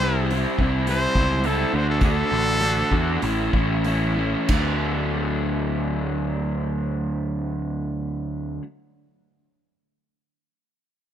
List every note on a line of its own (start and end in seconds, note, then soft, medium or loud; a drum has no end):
0.00 0.45 C2 medium
0.00 0.30 C3 medium
0.00 0.30 G3 medium
0.00 0.30 C5 medium
0.04 0.31 C4 medium
0.04 0.33 E4 medium
0.31 0.59 C3 medium
0.31 0.59 G3 medium
0.31 0.60 C4 medium
0.31 0.61 E4 medium
0.31 open hi-hat soft
0.58 1.06 C2 medium
0.58 0.86 C3 medium
0.58 0.87 G3 medium
0.58 0.88 C4 medium
0.58 0.90 E4 medium
0.58 kick medium
0.87 1.15 C3 medium
0.87 1.16 G3 medium
0.87 1.16 C4 medium
0.87 1.18 E4 medium
0.87 1.47 C5 medium
0.87 open hi-hat soft
1.15 1.64 C#2 medium
1.15 1.43 C3 medium
1.15 1.44 G3 medium
1.15 1.44 C4 medium
1.15 1.46 E4 medium
1.15 kick medium
1.44 1.71 C3 medium
1.44 1.71 G3 medium
1.44 1.72 C4 medium
1.44 1.74 E4 medium
1.44 1.77 A4 medium
1.44 open hi-hat soft
1.72 2.22 D2 medium
1.72 2.00 D3 medium
1.72 2.01 A3 medium
1.72 2.01 D4 medium
1.72 2.02 F#4 medium
1.72 1.88 C5 medium
1.90 2.02 A4 medium
2.01 2.30 D3 medium
2.01 2.31 A3 medium
2.01 2.32 D4 medium
2.01 2.33 F#4 medium
2.01 3.20 A4 medium
2.01 kick medium
2.01 open hi-hat soft
2.32 2.82 A1 medium
2.32 2.60 D3 medium
2.32 2.61 A3 medium
2.32 2.62 D4 medium
2.32 2.62 F#4 medium
2.60 2.90 D3 medium
2.60 2.91 A3 medium
2.60 2.91 D4 medium
2.60 2.92 F#4 medium
2.60 open hi-hat soft
2.91 3.17 E2 medium
2.91 3.20 D3 medium
2.91 3.20 A3 medium
2.91 3.21 D4 medium
2.91 3.21 F#4 medium
2.91 kick medium
3.21 3.49 A1 medium
3.21 3.52 A2 medium
3.21 3.53 E3 medium
3.21 3.54 A3 medium
3.21 3.54 C#4 medium
3.21 3.55 E4 medium
3.21 open hi-hat soft
3.53 4.34 A1 medium
3.53 3.83 A2 medium
3.53 3.85 E3 medium
3.53 3.86 A3 medium
3.53 3.86 C#4 medium
3.53 3.86 E4 medium
3.53 kick medium
3.84 4.14 A2 medium
3.84 4.15 E3 medium
3.84 4.16 A3 medium
3.84 4.16 C#4 medium
3.84 4.17 E4 medium
3.84 open hi-hat soft
4.15 4.46 A2 medium
4.15 4.47 E3 medium
4.15 4.47 A3 medium
4.15 4.48 C#4 medium
4.15 4.48 E4 medium
4.49 8.58 D2 medium
4.49 8.62 D3 medium
4.49 8.62 F#3 medium
4.49 8.63 A3 medium
4.49 8.63 D4 medium
4.49 kick medium
4.49 crash medium